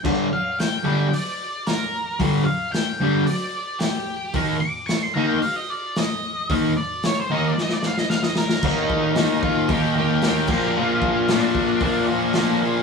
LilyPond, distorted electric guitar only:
\new Staff \with { instrumentName = "Distorted electric guitar" } { \clef bass \time 4/4 \key ees \lydian \tempo 4 = 112 <g, d g>8 r4 <g, d g>8 r2 | <g, d g>8 r4 <g, d g>8 r2 | <ees bes ees'>8 r4 <ees bes ees'>8 r2 | <ees bes ees'>8 r4 <ees bes ees'>8 r2 |
<ees bes ees'>4 <ees bes ees'>4 <ees bes ees'>8 <bes ees'>8 <ees bes ees'>8 <bes, f bes>8 | <bes, f bes>4 <bes, f bes>4 <bes, f bes>8 <f bes>8 <bes, f bes>8 <f bes>8 | }